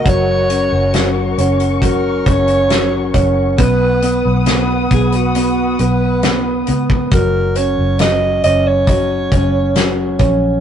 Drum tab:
HH |x-x-x-xxx-xxx-x-|x-x-x-xxx-x-x-x-|x-x-x-x-x-x-x-x-|
SD |----o-------o---|----o-------o---|----o-------o---|
BD |o-------o-o---o-|o-----o--------o|o-------o-o---o-|